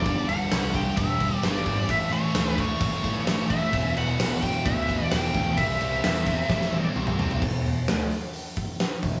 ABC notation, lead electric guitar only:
X:1
M:4/4
L:1/8
Q:1/4=130
K:Em
V:1 name="Lead electric guitar"
d f2 g e2 d2 | e ^c2 c4 e- | e f2 g e2 g2 | e6 z2 |
z8 |]